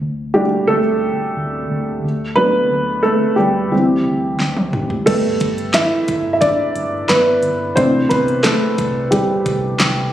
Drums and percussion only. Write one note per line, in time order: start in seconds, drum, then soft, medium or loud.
4.40 snare soft
4.57 high tom soft
4.73 mid tom medium
4.90 floor tom medium
5.07 kick loud
5.07 closed hi-hat medium
5.07 crash medium
5.40 kick medium
5.40 closed hi-hat medium
5.58 closed hi-hat soft
5.74 snare medium
5.74 clap medium
5.74 closed hi-hat medium
6.08 kick medium
6.08 closed hi-hat medium
6.41 kick medium
6.41 closed hi-hat medium
6.76 closed hi-hat medium
7.09 snare medium
7.09 clap medium
7.09 closed hi-hat medium
7.43 closed hi-hat medium
7.77 kick loud
7.77 closed hi-hat medium
8.11 kick medium
8.11 closed hi-hat medium
8.28 closed hi-hat soft
8.44 snare medium
8.44 clap medium
8.44 closed hi-hat medium
8.78 kick medium
8.78 closed hi-hat medium
9.12 kick medium
9.12 closed hi-hat medium
9.46 kick medium
9.46 closed hi-hat medium
9.80 snare medium
9.80 clap medium
9.80 closed hi-hat medium